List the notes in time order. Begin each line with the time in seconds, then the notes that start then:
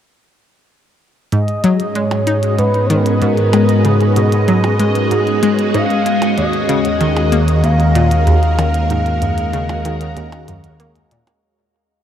1.32 G#2 G#3 D#5, closed hi-hat
1.48 closed hi-hat
1.64 F#3, closed hi-hat
1.74 C#4
1.80 closed hi-hat
1.95 G#3 C#5, closed hi-hat
2.11 closed hi-hat, percussion blips
2.27 D#4 F#4, closed hi-hat
2.43 closed hi-hat
2.59 G#2 B4, closed hi-hat
2.64 B3
2.74 closed hi-hat
2.86 C#5
2.90 D#3, closed hi-hat
2.95 B4
3.04 A#4, closed hi-hat
3.13 B4
3.22 G#2 A#4, closed hi-hat
3.37 closed hi-hat
3.53 G#3, closed hi-hat, percussion blips
3.69 closed hi-hat
3.85 C#3 G#4, closed hi-hat
4.01 closed hi-hat
4.16 B2, closed hi-hat
4.32 closed hi-hat
4.48 F#3, closed hi-hat
4.64 closed hi-hat, percussion blips
4.80 G#3, closed hi-hat
4.95 closed hi-hat
5.11 G#2, closed hi-hat
5.27 closed hi-hat
5.43 G#3, closed hi-hat
5.59 closed hi-hat
5.74 G#2 F5, closed hi-hat
5.90 closed hi-hat
6.06 G#3, closed hi-hat
6.22 closed hi-hat, percussion blips
6.38 D#2 D#5, closed hi-hat
6.53 closed hi-hat
6.69 C#3, closed hi-hat
6.85 closed hi-hat
7.01 D#3 A#4, closed hi-hat
7.17 closed hi-hat, percussion blips
7.32 A#3, closed hi-hat
7.48 closed hi-hat
7.64 D#2 F5, closed hi-hat
7.80 closed hi-hat
7.95 A#2, closed hi-hat
8.11 closed hi-hat
8.27 D#2, closed hi-hat
8.43 closed hi-hat
8.58 D#3, closed hi-hat, percussion blips
8.74 closed hi-hat
8.90 G#2, closed hi-hat
9.06 closed hi-hat
9.22 F#2, closed hi-hat
9.38 closed hi-hat
9.53 C#3, closed hi-hat
9.69 closed hi-hat, percussion blips
9.85 D#3, closed hi-hat
10.01 closed hi-hat
10.17 D#2, closed hi-hat
10.32 closed hi-hat, percussion blips
10.48 F#2, closed hi-hat
10.64 closed hi-hat
10.80 A#3, closed hi-hat
10.96 closed hi-hat
11.11 A#2, closed hi-hat
11.27 closed hi-hat, percussion blips